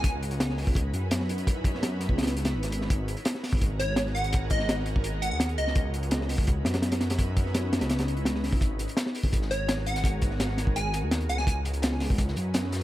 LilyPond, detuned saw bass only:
\new Staff \with { instrumentName = "Detuned saw bass" } { \clef bass \time 4/4 \key cis \dorian \tempo 4 = 168 cis,4.~ cis,16 cis,8. fis,4.~ | fis,4.~ fis,16 cis,4~ cis,16 gis,,4 | gis,,8. r4 gis,,2~ gis,,16~ | gis,,4.~ gis,,16 gis,,4 dis,8. cis,8~ |
cis,4.~ cis,16 cis,8. fis,4.~ | fis,4.~ fis,16 cis,2~ cis,16 | gis,,8. r4 gis,,2~ gis,,16~ | gis,,4.~ gis,,16 gis,,4 dis,8. cis,8~ |
cis,4.~ cis,16 cis,8. fis,4. | }